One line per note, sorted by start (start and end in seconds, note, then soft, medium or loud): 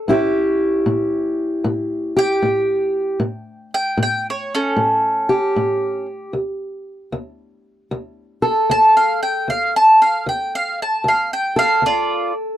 0.08 0.80 A2 medium
0.08 3.18 C#4 medium
0.08 3.18 E4 medium
0.08 2.15 G4 medium
0.86 1.58 A2 medium
1.64 2.37 A2 medium
2.17 3.18 G4 medium
2.17 3.70 G5 loud
2.42 3.15 A2 medium
3.20 3.93 A2 medium
3.74 3.99 G5 medium
3.97 4.71 A2 medium
4.03 4.26 G5 medium
4.30 4.53 C#5 medium
4.55 6.06 C#4 medium
4.55 6.06 A4 medium
4.76 5.50 A2 medium
5.29 6.31 G4 medium
5.56 6.29 A2 medium
6.33 7.06 D2 medium
7.12 7.85 D2 medium
7.91 8.64 D2 medium
8.42 11.56 A4 medium
8.69 9.42 D2 medium
8.69 8.95 A5 loud
8.97 9.21 F5 medium
9.23 9.47 G5 medium
9.48 10.20 D2 medium
9.48 9.74 F5 medium
9.76 10.00 A5 loud
10.02 10.26 F5 loud
10.26 10.99 D2 medium
10.26 10.53 G5 medium
10.55 10.79 F5 medium
10.82 11.06 A5 medium
11.04 11.77 D2 medium
11.08 11.32 F5 medium
11.33 11.57 G5 medium
11.56 12.57 A4 medium
11.56 11.83 F5 loud
11.82 12.55 D2 medium
11.86 12.32 F4 medium
11.86 12.34 D5 medium